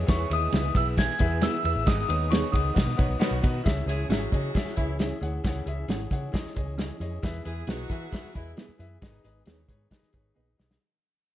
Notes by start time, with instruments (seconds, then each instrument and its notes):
0.06 fingered electric bass E2, tonewheel organ E3 B3 G#4, upright piano E3 B3 E4 G#4 B4 E5, vibraphone C#5, tine electric piano C#6, kick, snare, ride
0.29 fingered electric bass D#2, upright piano B3 E4 G#4 B4 E5, vibraphone D#5, tine electric piano D#6, ride
0.52 fingered electric bass C#2, upright piano B3 E4 G#4 B4 E5, clean electric guitar B3 E4 G#4 B4, snare, ride
0.74 fingered electric bass B1, upright piano B3 E4 G#4 B4 E5, vibraphone E5, tine electric piano E6, kick, ride
0.96 upright piano B3 E4 G#4 B4 E5, vibraphone G#5, tine electric piano G#6, kick, snare, ride
1.10 snare
1.19 fingered electric bass E2, upright piano B3 E4 G#4 B4 E5, kick, ride
1.41 upright piano B3 E4 G#4 B4 E5, clean electric guitar B3 E4 G#4 B4, vibraphone E5, tine electric piano E6, snare, ride
1.63 fingered electric bass E2, upright piano B3 E4 G#4 B4 E5, vibraphone E5, tine electric piano E6, ride
1.75 fingered electric bass A1
1.86 fingered electric bass G#1, upright piano G#2 B3 D#4 G#4 B4 D#5, tonewheel organ D#3, vibraphone D#5, tine electric piano D#6, kick, snare, ride
2.08 fingered electric bass D#2, upright piano B3 D#4 G#4 B4 C#5, vibraphone D#5, tine electric piano D#6, ride
2.29 upright piano B3 D#4 G#4 B4 D#5, clean electric guitar B3 D#4 G#4 B4, vibraphone C#5, tine electric piano C#6, snare, ride
2.52 fingered electric bass C#2, upright piano B3 D#4 G#4 B4 F#5, vibraphone D#5, tine electric piano D#6, kick, ride
2.74 fingered electric bass B1, upright piano B2 B3 D#4 F#4 B4 D#5, saxophone section D#3 B3 F#4, tonewheel organ B3 F#4, kick, ride
2.78 snare
2.86 fingered electric bass B2, snare
2.97 fingered electric bass B2, saxophone section D#3 B3 F#4, upright piano B3 D#4 F#4 B4 C#5, kick, ride
3.09 fingered electric bass B1
3.19 saxophone section D#3 B3 F#4, upright piano B3 D#4 F#4 B4 C#5, clean electric guitar B3 D#4 F#4 B4, snare, ride
3.31 fingered electric bass B1
3.42 fingered electric bass B2, upright piano B3 D#4 F#4 B4 D#5, kick, ride
3.64 fingered electric bass C#2, upright piano C#3 E4 G#4 C#5 E5, tonewheel organ E3 C#4 G#4, kick, snare, closed hi-hat
3.86 fingered electric bass C#2, saxophone section G#3 G#4, upright piano E4 G#4 C#5 E5, closed hi-hat
4.09 fingered electric bass G#1, saxophone section F#3 F#4, clean electric guitar C#4 E4 G#4 C#5, upright piano E4 G#4 C#5 E5, snare, closed hi-hat
4.31 fingered electric bass C#3, upright piano E4 G#4 C#5 D#5, kick, closed hi-hat
4.54 upright piano E4 G#4 C#5 E5, kick, snare, closed hi-hat
4.65 muted fingered electric bass stroke, snare
4.76 fingered electric bass C#2, saxophone section E3 E4, upright piano E4 G#4 C#5 E5, kick, closed hi-hat
4.99 clean electric guitar C#4 E4 G#4 C#5, upright piano E4 G#4 C#5 E5, snare, closed hi-hat
5.21 fingered electric bass D2, upright piano E4 G#4 C#5 F#5, closed hi-hat
5.44 fingered electric bass C#2, upright piano C#3 E4 G#4 C#5 F#5, kick, snare, closed hi-hat
5.66 fingered electric bass C#2, upright piano E4 G#4 C#5 E5, closed hi-hat
5.88 fingered electric bass G#1, clean electric guitar C#4 E4 G#4 C#5, upright piano E4 G#4 C#5 F#5, snare, closed hi-hat
6.10 fingered electric bass C#3, upright piano E4 G#4 C#5 F#5, kick, closed hi-hat
6.32 upright piano E4 G#4 C#5 D#5, kick, snare, closed hi-hat
6.45 muted fingered electric bass stroke, snare
6.55 fingered electric bass C#2, upright piano E4 G#4 C#5 D#5, kick, closed hi-hat
6.78 clean electric guitar C#4 E4 G#4 C#5, upright piano E4 G#4 C#5 D#5, snare, closed hi-hat
7.00 fingered electric bass F2, upright piano E4 G#4 C#5 D#5, closed hi-hat
7.22 fingered electric bass E2, upright piano E3 E4 G#4 B4 E5, tonewheel organ B3, kick, snare, closed hi-hat
7.44 fingered electric bass E2, saxophone section G#3 G#4, upright piano E4 G#4 B4 E5, closed hi-hat
7.67 fingered electric bass B1, saxophone section F#3 F#4, clean electric guitar B3 E4 G#4 B4, upright piano E4 G#4 B4 D#5, snare, closed hi-hat
7.89 fingered electric bass E3, upright piano E4 G#4 B4 E5, kick, closed hi-hat
8.11 upright piano E4 G#4 B4 E5, kick, snare, closed hi-hat
8.23 muted fingered electric bass stroke, snare
8.34 fingered electric bass E2, saxophone section E3 E4, upright piano E4 G#4 B4 D#5, kick, closed hi-hat
8.56 clean electric guitar B3 E4 G#4 B4, upright piano E4 G#4 B4 E5, snare, closed hi-hat
8.68 muted fingered electric bass stroke
8.78 fingered electric bass F#2, upright piano E4 G#4 B4 E5, closed hi-hat
9.01 fingered electric bass G#1, upright piano G#2 D#4 G#4 B4 D#5, tonewheel organ D#3, kick, snare, closed hi-hat
9.23 fingered electric bass G#1, upright piano D#4 G#4 B4 D#5, closed hi-hat
9.46 fingered electric bass D#2, clean electric guitar B3 D#4 G#4 B4, upright piano D#4 G#4 B4 C#5, snare, closed hi-hat
9.68 fingered electric bass G#2, upright piano D#4 G#4 B4 C#5, kick, closed hi-hat
9.90 upright piano D#4 G#4 B4 D#5, kick, snare, closed hi-hat
10.03 muted fingered electric bass stroke, snare
10.13 fingered electric bass G#1, upright piano D#4 G#4 B4 C#5, kick, closed hi-hat
10.34 fingered electric bass A#1, clean electric guitar B3 D#4 G#4 B4, upright piano D#4 G#4 B4 D#5
10.57 fingered electric bass B1, upright piano D#4 G#4 B4 D#5, snare
10.71 snare